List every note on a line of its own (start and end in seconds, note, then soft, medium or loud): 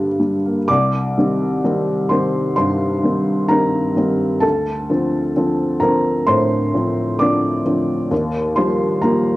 0.00 0.64 G2 soft
0.00 0.71 D3 soft
0.00 0.20 G3 soft
0.00 0.45 A#3 soft
0.00 0.70 D4 soft
0.00 0.17 G4 medium
0.20 0.59 G3 soft
0.45 0.69 A#3 soft
0.68 1.16 C2 soft
0.68 2.08 D5 medium
0.68 2.11 D6 medium
1.17 1.61 D#3 soft
1.17 1.61 G3 soft
1.17 1.61 C4 soft
1.64 2.07 D#3 soft
1.64 2.07 G3 soft
1.64 2.08 C4 soft
2.09 2.54 D#3 soft
2.09 2.54 G3 soft
2.09 2.54 C4 soft
2.09 2.55 C5 soft
2.09 2.54 C6 medium
2.56 3.03 G2 soft
2.56 3.46 C5 medium
2.56 3.49 C6 medium
3.03 3.46 D#3 soft
3.03 3.46 G3 soft
3.03 3.46 C4 soft
3.48 3.92 D#3 soft
3.48 3.92 G3 soft
3.48 3.93 C4 soft
3.48 4.39 A#4 medium
3.48 4.42 A#5 medium
3.96 4.39 D#3 soft
3.96 4.40 G3 soft
3.96 4.40 C4 soft
4.40 4.88 D2 soft
4.40 5.77 A4 medium
4.40 5.81 A5 medium
4.90 5.32 D3 soft
4.90 5.32 F3 soft
4.90 5.32 C4 soft
5.36 5.78 D3 soft
5.36 5.78 F3 soft
5.36 5.78 C4 soft
5.80 6.24 D3 soft
5.80 6.24 F3 soft
5.80 6.24 C4 soft
5.80 6.25 A#4 medium
5.80 6.27 A#5 medium
6.27 6.73 A2 soft
6.27 7.16 C5 medium
6.27 7.19 C6 medium
6.74 7.16 D3 soft
6.74 7.16 F3 soft
6.74 7.16 C4 soft
7.19 7.62 D3 soft
7.19 7.62 F3 soft
7.19 7.62 C4 soft
7.19 8.07 D5 medium
7.19 8.11 D6 medium
7.65 8.07 D3 soft
7.65 8.07 F3 soft
7.65 8.08 C4 soft
8.11 8.55 D#2 medium
8.56 8.99 F3 soft
8.56 8.99 G3 soft
8.56 8.99 A#3 soft
8.56 9.00 C5 medium
8.56 9.02 C6 medium
9.02 9.37 F3 soft
9.02 9.37 G3 soft
9.02 9.37 A#3 soft
9.02 9.37 A#4 medium
9.02 9.37 A#5 medium